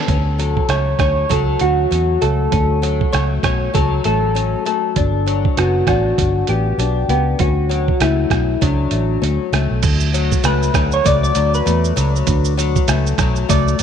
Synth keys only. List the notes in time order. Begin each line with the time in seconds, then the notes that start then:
Already playing: A4
0.69 C#5
1.00 C#5
1.30 A4
1.61 F#4
2.22 A4
3.13 C#5
3.44 C#5
3.74 A4
4.05 A4
4.67 A4
5.57 F#4
5.88 F#4
6.49 G4
7.10 G4
7.40 F#4
8.01 E4
8.62 D4
10.45 B4
10.93 C#5
11.06 D5
11.23 D5
11.55 B4
13.50 D5